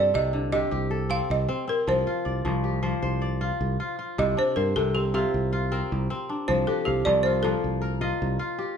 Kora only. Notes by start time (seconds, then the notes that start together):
Already playing: C3 C4 F4 A4
0.14 C3
0.33 D3
0.52 C3 G4
0.71 G4
0.91 A4
1.09 C4
1.49 C4
1.67 C4
1.87 F3
2.07 F4
2.25 D5
2.45 F3
2.64 G4
2.83 F3 C5
3.02 C5
3.22 D5
3.41 F4
3.80 F4
3.99 F4
4.18 C3
4.37 D4
4.57 C5
4.76 C3
4.95 C4
5.14 C3 F4
5.53 F4
5.72 C4 A#4
6.10 C4
6.29 D4
6.48 F3
6.68 G4
6.86 F5
7.06 F3
7.26 F4
7.44 F3 A#3
7.82 A#4
8.01 F4 D#5
8.39 F4
8.59 G4